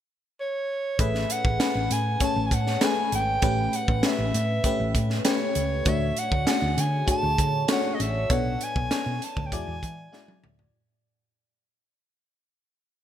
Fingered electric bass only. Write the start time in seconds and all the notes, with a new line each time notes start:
0.99 A1
1.45 A1
1.75 A1
1.91 A2
2.36 A1
2.51 A2
3.12 G#1
3.42 A1
3.88 A1
4.18 A1
4.34 A2
4.80 A1
4.95 A2
5.56 C#2
5.86 D2
6.32 D2
6.62 D2
6.77 D3
7.23 D2
7.39 D3
8.00 A1
8.30 B1
8.76 B1
9.06 B2
9.37 D2
9.52 E2
9.68 E2
9.83 E3
10.44 D2